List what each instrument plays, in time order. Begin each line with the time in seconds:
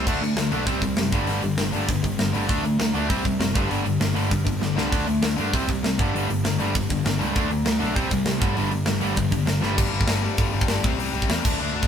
0.06 picked electric bass D2, distorted electric guitar D3 A3 D4, kick, crash
0.21 picked electric bass D2, distorted electric guitar D3 A3, open hi-hat
0.36 picked electric bass D2, distorted electric guitar D3 A3, snare, open hi-hat
0.51 picked electric bass B1, distorted electric guitar D3 A3 D4, open hi-hat
0.65 picked electric bass C2, distorted electric guitar C3 G3 C4, kick, open hi-hat
0.81 picked electric bass C2, distorted electric guitar C3 G3, kick, open hi-hat
0.97 picked electric bass F#1, distorted electric guitar C3 G3, snare, open hi-hat
1.12 picked electric bass G1, distorted electric guitar G2 D3 G3, kick, open hi-hat
1.27 picked electric bass G1, distorted electric guitar G2 D3 G3, open hi-hat
1.42 picked electric bass G1, distorted electric guitar G2 D3, open hi-hat
1.58 picked electric bass G1, distorted electric guitar G2 D3, snare, open hi-hat
1.72 picked electric bass G1, distorted electric guitar G2 D3 G3, open hi-hat
1.87 picked electric bass G1, distorted electric guitar G2 D3, kick, open hi-hat
2.03 distorted electric guitar G2 D3, kick, open hi-hat
2.18 picked electric bass G1, distorted electric guitar G2 D3, snare, open hi-hat
2.32 picked electric bass G1, distorted electric guitar G2 D3 G3, open hi-hat
2.47 picked electric bass D2, distorted electric guitar D3 A3 D4, kick, open hi-hat
2.63 picked electric bass D2, distorted electric guitar D3 A3, open hi-hat
2.79 picked electric bass D2, distorted electric guitar D3 A3, snare, open hi-hat
2.94 picked electric bass D2, distorted electric guitar D3 A3 D4, open hi-hat
3.09 picked electric bass C2, distorted electric guitar C3 G3 C4, kick, open hi-hat
3.25 picked electric bass C2, distorted electric guitar C3 G3, kick, open hi-hat
3.38 picked electric bass F#1, distorted electric guitar C3 G3, snare, open hi-hat
3.54 picked electric bass G1, distorted electric guitar G2 D3 G3, kick, open hi-hat
3.70 picked electric bass G1, distorted electric guitar G2 D3 G3, open hi-hat
3.85 picked electric bass G1, distorted electric guitar G2 D3, open hi-hat
4.00 picked electric bass G1, distorted electric guitar G2 D3, snare, open hi-hat
4.14 picked electric bass G1, distorted electric guitar G2 D3 G3, open hi-hat
4.30 picked electric bass G1, distorted electric guitar G2 D3, kick, open hi-hat
4.45 distorted electric guitar G2 D3, kick, open hi-hat
4.60 picked electric bass G1, distorted electric guitar G2 D3, snare
4.75 picked electric bass C2, distorted electric guitar G2 D3 G3, snare
4.90 picked electric bass D2, distorted electric guitar D3 A3 D4, kick, open hi-hat, splash
5.06 picked electric bass D2, distorted electric guitar D3 A3, open hi-hat
5.22 picked electric bass D2, distorted electric guitar D3 A3, snare, open hi-hat
5.36 picked electric bass G2, distorted electric guitar D3 A3 D4, open hi-hat
5.53 picked electric bass C2, distorted electric guitar C3 G3 C4, kick, open hi-hat
5.67 picked electric bass C2, distorted electric guitar C3 G3, kick, open hi-hat
5.83 picked electric bass C2, distorted electric guitar C3 G3, snare, open hi-hat
5.98 picked electric bass G1, distorted electric guitar G2 D3 G3, kick, open hi-hat
6.13 picked electric bass G1, distorted electric guitar G2 D3 G3, open hi-hat
6.29 picked electric bass G1, distorted electric guitar G2 D3, open hi-hat
6.44 picked electric bass G1, distorted electric guitar G2 D3, snare, open hi-hat
6.59 picked electric bass G1, distorted electric guitar G2 D3 G3, open hi-hat
6.75 picked electric bass G1, distorted electric guitar G2 D3, kick, open hi-hat
6.89 distorted electric guitar G2 D3, kick, open hi-hat
7.04 picked electric bass G1, distorted electric guitar G2 D3, snare, open hi-hat
7.18 picked electric bass C#2, distorted electric guitar G2 D3 G3, open hi-hat
7.33 picked electric bass D2, distorted electric guitar D3 A3 D4, kick, open hi-hat
7.49 picked electric bass D2, distorted electric guitar D3 A3, open hi-hat
7.65 picked electric bass D2, distorted electric guitar D3 A3, snare, open hi-hat
7.79 picked electric bass B1, distorted electric guitar D3 A3 D4, open hi-hat
7.95 picked electric bass C2, distorted electric guitar C3 G3 C4, kick, open hi-hat
8.11 picked electric bass C2, distorted electric guitar C3 G3, kick, open hi-hat
8.25 picked electric bass C2, distorted electric guitar C3 G3, snare, open hi-hat
8.40 picked electric bass G1, distorted electric guitar G2 D3 G3, kick, open hi-hat
8.55 picked electric bass G1, distorted electric guitar G2 D3 G3, open hi-hat
8.71 picked electric bass G1, distorted electric guitar G2 D3, open hi-hat
8.86 picked electric bass G1, distorted electric guitar G2 D3, snare, open hi-hat
9.00 picked electric bass G1, distorted electric guitar G2 D3 G3, open hi-hat
9.16 picked electric bass G1, distorted electric guitar G2 D3, kick, open hi-hat
9.32 distorted electric guitar G2 D3, kick, open hi-hat
9.46 picked electric bass G1, distorted electric guitar G2 D3, snare, open hi-hat
9.61 picked electric bass G1, distorted electric guitar G2 D3 G3, snare
9.76 picked electric bass G1, distorted electric guitar G2 D3 G3, kick, crash
9.91 picked electric bass G1, distorted electric guitar G2 D3 G3
10.01 kick
10.06 picked electric bass G1, distorted electric guitar G2 D3 G3, snare, open hi-hat
10.22 distorted electric guitar G2 D3 G3
10.37 picked electric bass G1, distorted electric guitar G2 D3 G3, kick, open hi-hat
10.53 picked electric bass G1, distorted electric guitar G2 D3 G3
10.61 kick
10.67 picked electric bass G1, distorted electric guitar G2 D3 G3, snare, open hi-hat
10.83 picked electric bass C2, distorted electric guitar C3 G3 C4, kick
10.98 picked electric bass C2, distorted electric guitar C3 G3 C4, open hi-hat
11.13 picked electric bass C2, distorted electric guitar C3 G3 C4
11.22 kick
11.29 picked electric bass E2, distorted electric guitar C3 G3 C4, snare, open hi-hat
11.44 picked electric bass D2, distorted electric guitar D3 A3 D4, kick, crash
11.59 picked electric bass D2, distorted electric guitar D3 A3 D4
11.74 picked electric bass D2, distorted electric guitar D3 A3 D4
11.83 kick